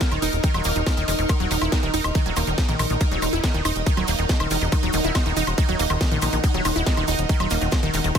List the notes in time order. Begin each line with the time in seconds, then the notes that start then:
Already playing: D#4 A#4 D#5
0.01 D#3, kick, snare, closed hi-hat, ride, shaker
0.11 D#1 D#3, closed hi-hat, high woodblock, shaker
0.22 D#1 D#4, open hi-hat, shaker
0.33 D#1, closed hi-hat, shaker
0.43 D#3, kick, closed hi-hat, ride, shaker
0.54 D#1 F#3, closed hi-hat, high woodblock, shaker
0.64 D#1 A#3, open hi-hat, shaker
0.76 D#1 D#3, closed hi-hat, shaker
0.86 D#4, kick, snare, closed hi-hat, ride, high woodblock, shaker
0.97 D#1 D#3, closed hi-hat, shaker
1.08 E1 D#3, open hi-hat, shaker
1.19 D#1 D#3, closed hi-hat, shaker
1.29 D#3, kick, closed hi-hat, ride, high woodblock, shaker
1.40 D#1 F#3, closed hi-hat, shaker
1.51 D#1 D#3, open hi-hat, shaker
1.62 D#1 E4, closed hi-hat, high woodblock, shaker
1.72 D#3, kick, snare, closed hi-hat, ride, shaker
1.83 D#1 D#3, closed hi-hat, shaker
1.94 D#1 D#4, open hi-hat, shaker
2.04 D#1, closed hi-hat, high woodblock, shaker
2.15 D#3, kick, closed hi-hat, ride, shaker
2.26 D#1 F#3, closed hi-hat, shaker
2.36 D#1 A#3, open hi-hat, high woodblock, shaker
2.47 D#1 D#3, closed hi-hat, shaker
2.58 D#4, kick, snare, closed hi-hat, ride, shaker
2.68 A#1 D#3, closed hi-hat, shaker
2.79 A#1 D#3, open hi-hat, high woodblock, shaker
2.90 A#1 D#3, closed hi-hat, shaker
3.00 D#3 D#5, kick, closed hi-hat, ride, shaker
3.12 D#1 F#3, closed hi-hat, shaker
3.22 D#1 D#3, open hi-hat, high woodblock, shaker
3.33 D#1 E4, closed hi-hat, shaker
3.44 D#3, kick, snare, closed hi-hat, ride, shaker
3.54 D#1 D#3, closed hi-hat, shaker
3.64 D#1 D#4 F#5, open hi-hat, high woodblock, shaker
3.75 D#1, closed hi-hat, shaker
3.86 D#3, kick, closed hi-hat, ride, shaker
3.97 D#1 F#3, closed hi-hat, high woodblock, shaker
4.08 D#1 A#3, open hi-hat, shaker
4.18 D#1 D#3, closed hi-hat, shaker
4.29 D#3, kick, snare, closed hi-hat, ride, shaker
4.40 D#1 D#3, closed hi-hat, high woodblock, shaker
4.51 E1 D#3, open hi-hat, shaker
4.61 D#1 D#3, closed hi-hat, shaker
4.72 D#3, kick, closed hi-hat, ride, high woodblock, shaker
4.83 D#1 F#3, closed hi-hat, shaker
4.93 D#1 D#3, open hi-hat, shaker
5.04 D#1 E4, closed hi-hat, shaker
5.15 D#3, kick, snare, closed hi-hat, ride, high woodblock, shaker
5.26 D#1 D#3, closed hi-hat, shaker
5.37 D#1 D#4, open hi-hat, shaker
5.47 D#1, closed hi-hat, high woodblock, shaker
5.58 D#3, kick, closed hi-hat, ride, shaker
5.69 D#1 F#3, closed hi-hat, shaker
5.79 D#1 A#3, open hi-hat, shaker
5.90 D#1 D#3, closed hi-hat, high woodblock, shaker
6.01 D#3, kick, snare, closed hi-hat, ride, shaker
6.11 A#1 D#3, closed hi-hat, shaker
6.22 A#1 D#3, open hi-hat, high woodblock, shaker
6.33 A#1 D#3, closed hi-hat, shaker
6.44 D#3, kick, closed hi-hat, ride, shaker
6.54 D#1 F#3, closed hi-hat, shaker
6.65 D#1 D#3, open hi-hat, high woodblock, shaker
6.76 D#1 E4, closed hi-hat, shaker
6.86 D#3, kick, snare, closed hi-hat, ride, shaker
6.97 D#1 D#3, closed hi-hat, high woodblock, shaker
7.08 D#1 D#4, open hi-hat, shaker
7.18 D#1, closed hi-hat, shaker
7.29 D#3, kick, closed hi-hat, ride, shaker
7.40 D#1 F#3, closed hi-hat, high woodblock, shaker
7.50 D#1 A#3, open hi-hat, shaker
7.61 D#1 D#3, closed hi-hat, shaker
7.72 D#3, kick, snare, closed hi-hat, ride, high woodblock, shaker
7.83 D#1 D#3, closed hi-hat, shaker
7.94 E1 D#3, open hi-hat, shaker
8.04 D#1 D#3, closed hi-hat, shaker
8.15 D#3, kick, closed hi-hat, ride, high woodblock, shaker